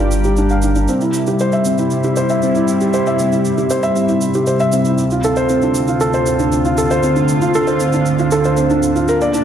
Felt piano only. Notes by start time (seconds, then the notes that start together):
Already playing: D4 G4 A#4 D5
0.00 F4
0.25 G4
0.38 D4
0.51 F5
0.64 D4
0.76 D4
0.89 C4
1.02 E4
1.28 G4
1.41 C5
1.53 E5
1.66 C4
1.79 E4
2.04 G4
2.17 C5
2.30 E5
2.43 C4
2.56 E4
2.81 G4
2.94 C5
3.07 E5
3.20 C4
3.32 E4
3.58 G4
3.71 C5
3.83 E5
3.95 C4
4.09 E4
4.35 G4
4.47 C5
4.60 E5
4.73 C4
4.86 E4
5.12 F4
5.24 A4
5.37 C5
5.50 C4
5.63 D4
5.88 F4
6.01 A4
6.14 C5
6.27 C4
6.40 D4
6.65 F4
6.78 A4
6.91 C5
7.04 C4
7.16 D4
7.42 F4
7.55 A4
7.67 C5
7.80 C4
7.94 D4
8.19 F4
8.32 A4
8.45 C5
8.58 C4
8.71 D4
8.96 F4
9.09 A#4
9.22 D5
9.34 D4